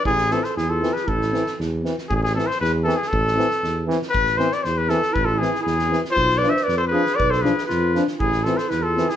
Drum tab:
SD |-oooo-oo|-oooo-oo|-oooo-oo|-oooo-oo|
BD |o-------|o-------|o-------|o-------|

SD |-oooo-oo|--oooooo|-oooo--o|-oooo-oo|
BD |o-------|o-------|o-------|o-------|

SD |-oooo-oo|
BD |o-------|